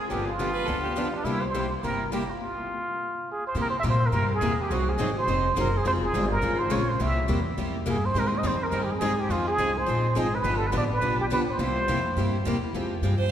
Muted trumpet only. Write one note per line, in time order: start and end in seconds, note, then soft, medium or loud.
0.10 0.26 G4 medium
0.27 1.15 F4 medium
1.14 1.26 D4 medium
1.24 1.43 E4 medium
1.41 1.70 C5 medium
1.83 2.10 A#4 medium
2.13 2.31 G4 medium
2.30 3.27 F4 medium
3.31 3.44 G#4 medium
3.47 3.56 C5 medium
3.61 3.67 A#4 medium
3.70 3.76 C5 medium
3.79 3.82 E5 medium
3.90 4.07 C5 loud
4.06 4.32 A#4 loud
4.34 4.63 G#4 medium
4.61 4.72 G4 medium
4.73 4.91 F#4 medium
4.89 5.16 G#4 medium
5.18 5.55 C5 loud
5.60 5.78 A#4 medium
5.77 5.86 G#4 medium
5.87 5.91 C5 loud
6.03 6.29 G#4 medium
6.31 6.60 A#4 medium
6.59 6.73 C5 medium
6.72 6.90 C#5 medium
6.89 7.00 C5 medium
7.01 7.27 E5 medium
7.90 8.07 G#4 medium
8.05 8.20 C5 loud
8.19 8.29 A#4 loud
8.27 8.39 C5 medium
8.38 8.49 D#5 medium
8.47 8.65 C5 medium
8.63 8.85 A#4 medium
8.83 8.92 G4 medium
8.91 9.21 G#4 loud
9.19 9.32 G4 medium
9.31 9.47 F4 medium
9.48 9.79 G#4 medium
9.77 10.17 C5 medium
10.18 10.36 G#4 medium
10.35 10.59 B4 medium
10.57 10.68 A4 medium
10.67 10.75 B4 medium
10.77 10.84 D5 medium
10.94 11.19 B4 loud
11.21 11.26 G4 medium
11.33 11.40 B4 medium
11.50 12.43 C5 medium